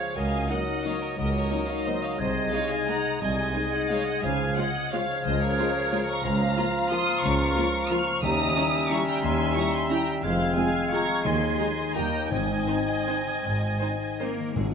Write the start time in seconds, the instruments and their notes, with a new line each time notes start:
Already playing: harp C#3 G#3 F4 G#4, bassoon F3, clarinet G#4, violin section C#5 F5, oboe C#5, flute section G#6
0.00 harp C#4
0.16 double bass section C#2, cello section C#2, harp C#3, bassoon F#3, clarinet A#4, oboe D#5, violin section F5 G#5, flute section D#6
0.33 harp C#4
0.49 bassoon F#3, french horn section F#3 D#4, viola section A#3 D#4, harp D#4, clarinet A#4, violin section D#5 F#5, oboe D#5, flute section D#6
0.67 harp A#4
0.84 harp F#3, french horn section F#3 D#4, viola section A#3 D#4, violin section C#5 F5
1.01 harp C#4, violin section A#4 C#5
1.17 cello section C#2, double bass section C#2, harp C#3, bassoon F#3, violin section A#4 D#5, clarinet A#4, oboe D#5, flute section D#6
1.34 harp F#3, violin section A#4 C#5
1.51 french horn section F#3 D#4, viola section A#3 D#4, harp D#4
1.68 harp A#4, violin section C#5 F5
1.86 french horn section F#3 D#4, harp F#3, viola section A#3 D#4, violin section C5 D#5
2.03 harp C#4, violin section C#5 F5
2.19 cello section C2, double bass section C2, harp C3, bassoon G#3, clarinet G#4, violin section C5 D#5, oboe D#5, flute section G#6
2.36 harp C4
2.52 viola section G#3 D#4, french horn section G#3 D#4, harp D#4, violin section C#5 F5
2.70 harp G#4, violin section F5 G#5
2.88 french horn section G#3 D#4, viola section G#3 D#4, harp G#3, violin section F#5 A#5
3.05 harp C4
3.21 cello section C2, double bass section C2, harp C3, bassoon G#3, clarinet G#4, oboe D#5, violin section D#5 G#5, flute section G#6
3.38 harp G#3
3.55 viola section G#3 D#4, french horn section G#3 D#4, harp D#4
3.73 harp G#4, violin section D#5 F#5
3.89 viola section G#3 D#4, harp G#3, french horn section G#3 D#4, violin section C#5 F5
4.06 harp C4, violin section D#5 F#5
4.23 cello section C#2, double bass section C#2, harp C#3, bassoon F3, clarinet G#4, oboe F5, violin section F5 G#5, flute section G#6
4.40 harp C#4
4.57 viola section G#3 F4, french horn section G#3 F4, harp F4, violin section D#5 F#5
4.75 harp G#4
4.92 bassoon F3, harp G#3, viola section G#3 F4, french horn section G#3 F4, clarinet G#4, violin section C#5 F5, oboe F5, flute section G#6
5.09 harp C#4
5.25 cello section C#2, double bass section C#2, harp C#3, violin section C5 D#5
5.41 harp G#3, violin section A#4 C#5
5.59 viola section G#3 F4, french horn section G#3 F4, harp F4
5.92 viola section G#3 F4, harp G#3, french horn section G#3 F4
6.08 harp C#4, violin section A#5 C#6
6.24 cello section C#2, double bass section C#2, harp C#3, bassoon F3, clarinet F4, oboe F5, violin section F5 A#5, flute section A#5
6.40 harp A#3
6.57 french horn section F3 F4, viola section A#3 F4, harp F4
6.74 harp A#4
6.91 french horn section F3 F4, viola section A#3 F4, harp C#4, violin section C6 D#6
7.07 harp A#3
7.22 cello section C#2, double bass section C#2, harp C#3, violin section A#5 C#6
7.38 harp C#4
7.55 french horn section F3 F4, viola section A#3 F4, harp F4
7.73 harp A#4
7.89 french horn section F3 F4, viola section A#3 F4, harp C#4, violin section C#6 F6
8.07 harp A#3
8.22 cello section D#2, double bass section D#2, harp D#3, timpani D#3, bassoon G3, clarinet C#4, oboe E5, violin section A#5 D#6, flute section A#5
8.39 harp G3
8.55 french horn section G3 E4, viola section C#4 E4, harp E4
8.73 harp G4
8.90 french horn section G3 E4, viola section C#4 E4, harp C#4, violin section A#5 C#6
9.07 harp G3, violin section G5 A#5
9.23 cello section D#2, double bass section D#2, harp D#3, violin section G#5 C6
9.40 harp C#4
9.56 french horn section G3 E4, viola section C#4 E4, harp E4, violin section A#5 C#6
9.73 harp G4, violin section G#5 C6
9.90 french horn section G3 E4, viola section C#4 E4, harp C#4, violin section G5 A#5
10.08 harp G3
10.23 double bass section F1, cello section F2, harp F3, bassoon G#3, clarinet C4, violin section C5 F5, oboe F5, flute section G#6
10.40 harp G#3
10.56 french horn section G#3 F4, viola section C4 G#4, harp F4, violin section F5 G#5
10.91 french horn section G#3 F4, viola section C4 G#4, harp C4, violin section A#5 C#6
11.09 harp G#3
11.25 cello section D#2, double bass section D#2, timpani D#3, harp D#3, clarinet D#4, oboe D#5, violin section G#5 C6
11.42 harp G#3
11.58 french horn section G#3 D#4, viola section D#4 G#4
11.77 harp D#4
11.95 cello section D#2, double bass section D#2, harp D#3, french horn section G3 D#4, bassoon A#3, viola section D#4 G4, violin section G5 A#5, flute section G6
12.14 harp D#4 G4
12.31 double bass section G#1, cello section G#2, harp G#2, timpani G#2, bassoon C4, clarinet D#4, violin section D#5 G#5, oboe D#5, flute section G#6
12.50 harp D#3
12.68 french horn section C4 D#4, viola section D#4 C5, harp D#4
12.89 harp G#4
13.08 harp C4, french horn section C4 D#4, viola section D#4 C5
13.26 harp D#3
13.44 double bass section G#1, cello section G#2, harp G#2
13.62 harp C4
13.81 french horn section C4 D#4, viola section D#4 C5, harp D#4
14.01 harp G#4
14.20 cello section A#3, harp C4, french horn section C4 D#4, viola section D#4 C5, violin section A#4
14.39 harp D#3
14.55 double bass section G#1, timpani G#2, harp G#2, cello section G#3, violin section G#4